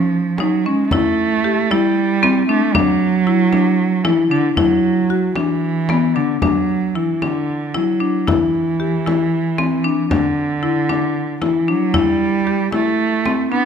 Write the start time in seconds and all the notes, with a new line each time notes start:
Already playing: F3 C#4
0.37 F#3 D#4, frame drum
0.65 G#3 C#4
0.90 A3 E4, frame drum
1.44 G4
1.70 G3 E4, frame drum
2.23 C4, frame drum
2.48 A3 D4
2.74 F#3 D4, frame drum
3.27 E4
3.53 D4, frame drum
4.04 E3 E4, frame drum
4.30 D3 D4
4.56 F#3 E4, frame drum
5.09 F#4, frame drum
5.36 E3 D4, frame drum
5.89 B3, frame drum
6.16 D3 D4
6.42 F#3 D4, frame drum
6.69 frame drum
6.95 E3 E4
7.22 D3 D4, frame drum
7.74 F#3 E4, frame drum
8.00 D4
8.27 E3 E4, frame drum
8.55 frame drum
8.80 G4
9.06 E4, frame drum
9.58 C4, frame drum
9.84 D4
10.11 D3 D4, frame drum
10.37 frame drum
10.63 E4
10.89 D4, frame drum
11.42 E3 E4, frame drum
11.68 F#3 D4
11.94 G3 E4, frame drum
12.47 G4, frame drum
12.72 A3 E4, frame drum
13.26 C4, frame drum
13.52 B3 D4